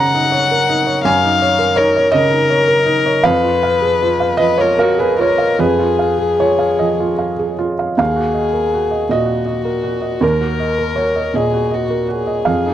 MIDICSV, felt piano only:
0, 0, Header, 1, 2, 480
1, 0, Start_track
1, 0, Key_signature, -6, "minor"
1, 0, Tempo, 731707
1, 695, Time_signature, 6, 3, 24, 8
1, 2129, Tempo, 771208
1, 3089, Tempo, 801068
1, 5009, Tempo, 745342
1, 8066, End_track
2, 0, Start_track
2, 0, Title_t, "Felt piano"
2, 0, Program_c, 0, 0
2, 0, Control_c, 0, 64, 127
2, 0, Note_on_c, 0, 42, 74
2, 0, Note_on_c, 0, 49, 62
2, 0, Note_on_c, 0, 63, 56
2, 0, Note_on_c, 0, 70, 57
2, 0, Note_on_c, 0, 73, 62
2, 0, Note_on_c, 0, 82, 114
2, 92, Note_off_c, 0, 63, 0
2, 92, Note_on_c, 0, 63, 59
2, 165, Note_off_c, 0, 49, 0
2, 210, Note_off_c, 0, 73, 0
2, 210, Note_on_c, 0, 73, 63
2, 288, Note_off_c, 0, 63, 0
2, 337, Note_off_c, 0, 70, 0
2, 337, Note_on_c, 0, 70, 62
2, 407, Note_off_c, 0, 73, 0
2, 454, Note_on_c, 0, 63, 69
2, 530, Note_off_c, 0, 70, 0
2, 570, Note_on_c, 0, 73, 65
2, 647, Note_off_c, 0, 63, 0
2, 663, Note_off_c, 0, 82, 0
2, 668, Note_off_c, 0, 42, 0
2, 688, Note_on_c, 0, 42, 80
2, 691, Note_on_c, 0, 80, 108
2, 708, Control_c, 0, 64, 0
2, 763, Note_off_c, 0, 73, 0
2, 804, Control_c, 0, 64, 127
2, 815, Note_on_c, 0, 63, 65
2, 932, Note_on_c, 0, 73, 70
2, 1002, Note_off_c, 0, 63, 0
2, 1042, Note_on_c, 0, 70, 61
2, 1119, Note_off_c, 0, 73, 0
2, 1137, Note_off_c, 0, 80, 0
2, 1155, Note_on_c, 0, 73, 99
2, 1170, Note_on_c, 0, 63, 60
2, 1233, Note_off_c, 0, 70, 0
2, 1279, Note_off_c, 0, 73, 0
2, 1289, Note_on_c, 0, 73, 69
2, 1357, Note_off_c, 0, 63, 0
2, 1388, Note_on_c, 0, 75, 110
2, 1404, Note_on_c, 0, 49, 66
2, 1477, Note_off_c, 0, 73, 0
2, 1515, Note_on_c, 0, 63, 62
2, 1595, Note_off_c, 0, 49, 0
2, 1640, Note_on_c, 0, 73, 65
2, 1711, Note_off_c, 0, 63, 0
2, 1757, Note_on_c, 0, 70, 62
2, 1834, Note_off_c, 0, 73, 0
2, 1878, Note_on_c, 0, 63, 68
2, 1955, Note_off_c, 0, 70, 0
2, 2007, Note_on_c, 0, 73, 67
2, 2077, Note_off_c, 0, 63, 0
2, 2096, Note_off_c, 0, 75, 0
2, 2099, Note_off_c, 0, 42, 0
2, 2122, Note_on_c, 0, 77, 114
2, 2129, Note_off_c, 0, 73, 0
2, 2131, Note_on_c, 0, 41, 79
2, 2142, Control_c, 0, 64, 0
2, 2250, Note_on_c, 0, 65, 63
2, 2258, Control_c, 0, 64, 127
2, 2361, Note_off_c, 0, 77, 0
2, 2370, Note_on_c, 0, 77, 67
2, 2437, Note_off_c, 0, 65, 0
2, 2485, Note_on_c, 0, 68, 56
2, 2557, Note_off_c, 0, 77, 0
2, 2611, Note_on_c, 0, 65, 57
2, 2676, Note_off_c, 0, 68, 0
2, 2725, Note_on_c, 0, 77, 63
2, 2800, Note_off_c, 0, 65, 0
2, 2831, Note_on_c, 0, 75, 103
2, 2849, Note_on_c, 0, 53, 59
2, 2918, Note_off_c, 0, 77, 0
2, 2951, Note_off_c, 0, 75, 0
2, 2959, Note_on_c, 0, 73, 88
2, 2961, Note_on_c, 0, 65, 57
2, 3042, Note_off_c, 0, 53, 0
2, 3077, Note_off_c, 0, 73, 0
2, 3088, Note_on_c, 0, 70, 89
2, 3092, Note_on_c, 0, 77, 60
2, 3158, Note_off_c, 0, 65, 0
2, 3199, Note_off_c, 0, 70, 0
2, 3206, Note_on_c, 0, 68, 53
2, 3216, Note_on_c, 0, 71, 82
2, 3282, Note_off_c, 0, 77, 0
2, 3324, Note_off_c, 0, 71, 0
2, 3329, Note_on_c, 0, 65, 58
2, 3342, Note_on_c, 0, 73, 84
2, 3400, Note_off_c, 0, 68, 0
2, 3446, Note_on_c, 0, 77, 60
2, 3523, Note_off_c, 0, 65, 0
2, 3549, Note_off_c, 0, 41, 0
2, 3562, Note_off_c, 0, 73, 0
2, 3571, Note_on_c, 0, 41, 70
2, 3572, Note_on_c, 0, 71, 86
2, 3584, Control_c, 0, 64, 0
2, 3644, Note_off_c, 0, 77, 0
2, 3681, Control_c, 0, 64, 127
2, 3689, Note_on_c, 0, 65, 54
2, 3810, Note_on_c, 0, 77, 57
2, 3885, Note_off_c, 0, 65, 0
2, 3927, Note_on_c, 0, 68, 53
2, 4006, Note_off_c, 0, 77, 0
2, 4033, Note_off_c, 0, 71, 0
2, 4052, Note_on_c, 0, 65, 50
2, 4055, Note_on_c, 0, 73, 78
2, 4124, Note_off_c, 0, 68, 0
2, 4167, Note_on_c, 0, 77, 55
2, 4247, Note_off_c, 0, 65, 0
2, 4279, Note_off_c, 0, 73, 0
2, 4288, Note_on_c, 0, 75, 69
2, 4297, Note_on_c, 0, 53, 51
2, 4364, Note_off_c, 0, 77, 0
2, 4416, Note_on_c, 0, 65, 50
2, 4489, Note_off_c, 0, 53, 0
2, 4526, Note_on_c, 0, 77, 51
2, 4608, Note_off_c, 0, 65, 0
2, 4649, Note_on_c, 0, 68, 50
2, 4723, Note_off_c, 0, 77, 0
2, 4765, Note_on_c, 0, 65, 55
2, 4844, Note_off_c, 0, 68, 0
2, 4888, Note_on_c, 0, 77, 56
2, 4959, Note_off_c, 0, 65, 0
2, 4982, Note_off_c, 0, 75, 0
2, 4985, Note_off_c, 0, 41, 0
2, 4997, Note_off_c, 0, 77, 0
2, 4998, Note_on_c, 0, 39, 55
2, 5006, Note_on_c, 0, 77, 80
2, 5022, Control_c, 0, 64, 0
2, 5117, Note_on_c, 0, 66, 46
2, 5130, Control_c, 0, 64, 127
2, 5234, Note_on_c, 0, 75, 49
2, 5318, Note_off_c, 0, 66, 0
2, 5356, Note_on_c, 0, 70, 42
2, 5435, Note_off_c, 0, 75, 0
2, 5487, Note_on_c, 0, 66, 43
2, 5554, Note_off_c, 0, 70, 0
2, 5600, Note_on_c, 0, 75, 46
2, 5678, Note_off_c, 0, 66, 0
2, 5700, Note_off_c, 0, 77, 0
2, 5717, Note_on_c, 0, 46, 46
2, 5720, Note_off_c, 0, 75, 0
2, 5729, Note_on_c, 0, 75, 80
2, 5824, Note_on_c, 0, 66, 44
2, 5912, Note_off_c, 0, 46, 0
2, 5943, Note_off_c, 0, 75, 0
2, 5953, Note_on_c, 0, 75, 48
2, 6025, Note_off_c, 0, 66, 0
2, 6075, Note_on_c, 0, 70, 46
2, 6150, Note_off_c, 0, 75, 0
2, 6196, Note_on_c, 0, 66, 46
2, 6271, Note_off_c, 0, 70, 0
2, 6313, Note_on_c, 0, 75, 45
2, 6392, Note_off_c, 0, 66, 0
2, 6412, Note_off_c, 0, 39, 0
2, 6435, Note_on_c, 0, 39, 59
2, 6451, Note_on_c, 0, 70, 73
2, 6458, Control_c, 0, 64, 0
2, 6511, Note_off_c, 0, 75, 0
2, 6549, Control_c, 0, 64, 127
2, 6563, Note_on_c, 0, 66, 44
2, 6686, Note_on_c, 0, 75, 45
2, 6759, Note_off_c, 0, 66, 0
2, 6799, Note_off_c, 0, 70, 0
2, 6808, Note_on_c, 0, 70, 43
2, 6882, Note_off_c, 0, 75, 0
2, 6919, Note_on_c, 0, 73, 70
2, 6929, Note_on_c, 0, 66, 41
2, 7004, Note_off_c, 0, 70, 0
2, 7045, Note_on_c, 0, 75, 47
2, 7124, Note_off_c, 0, 66, 0
2, 7150, Note_off_c, 0, 73, 0
2, 7164, Note_on_c, 0, 46, 44
2, 7167, Note_off_c, 0, 75, 0
2, 7177, Note_on_c, 0, 75, 68
2, 7283, Note_on_c, 0, 66, 46
2, 7361, Note_off_c, 0, 46, 0
2, 7395, Note_off_c, 0, 75, 0
2, 7404, Note_on_c, 0, 75, 47
2, 7480, Note_off_c, 0, 66, 0
2, 7526, Note_on_c, 0, 70, 44
2, 7600, Note_off_c, 0, 75, 0
2, 7645, Note_on_c, 0, 66, 49
2, 7721, Note_off_c, 0, 70, 0
2, 7763, Note_on_c, 0, 75, 49
2, 7839, Note_off_c, 0, 66, 0
2, 7861, Note_off_c, 0, 39, 0
2, 7881, Note_on_c, 0, 77, 83
2, 7886, Note_off_c, 0, 75, 0
2, 7891, Note_on_c, 0, 41, 58
2, 7902, Control_c, 0, 64, 0
2, 8014, Control_c, 0, 64, 127
2, 8014, Note_on_c, 0, 63, 45
2, 8066, Note_off_c, 0, 41, 0
2, 8066, Note_off_c, 0, 63, 0
2, 8066, Note_off_c, 0, 77, 0
2, 8066, End_track
0, 0, End_of_file